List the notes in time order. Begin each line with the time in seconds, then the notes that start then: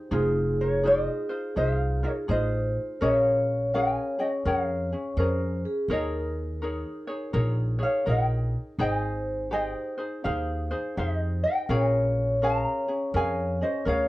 Already playing: D#4 G4 G#4 C5 D#5
0.11 F1 D#4 F4 G#4 C5
0.61 A#4 C#5
0.83 D#4 F4 G#4 C5 D#5
1.29 D#4 F4 C5
1.56 C2 D#4 F4 G#4 C5 E5
1.75 F5
2.03 D#4 F4 A#4 C#5
2.28 A1 D#4 F4 G#4 C5 D#5
3.01 A#1 C#4 G#4 A#4 C#5 F5
3.74 C#4 G#4 A#4 F5 G#5
4.19 C#4 G#4 D#5 G5
4.45 F2 C#4 G#4 A#4 C#5 F5
4.92 C#4 G#4
5.17 F2 C#4 G#4 A#4 C5
5.65 G#4
5.88 D#2 D#4 G#4 A#4 C#5
5.93 A#4 D#5
6.62 D#4 G#4 A#4 C#5
7.07 D#4 G#4 C#5
7.33 A#1 D#4 G#4 A#4 C#5
7.79 D#4 G#4 C#5
7.83 C#5 F5
8.06 A#1 D#4 G#4 A#4 C#5 G5
8.11 D#5
8.79 G#1 D#4 G#4 C5 D#5 G5
8.92 G#5
9.51 D#4 G4 G#4 C5 D#5 G#5
9.64 G5
9.98 D#4 G#4 C5
10.24 D#2 D#4 G4 G#4 C5 F5
10.71 D#4 G#4 C5
10.97 F2 D#4 G4 G#4 C5 E5
11.16 D#5
11.43 D#5 G5
11.69 A#1 C#4 G#4 A#4 C#5 F5 G5
11.81 G#5
12.42 C#4 G#4 A#4 F5 A#5
12.88 C#4 G#4
13.14 F2 C#4 G#4 A#4 F5 G#5
13.61 C#4 G#4 C5 D#5
13.85 D2 C#4 G#4 A#4 C#5 F5
13.89 C#5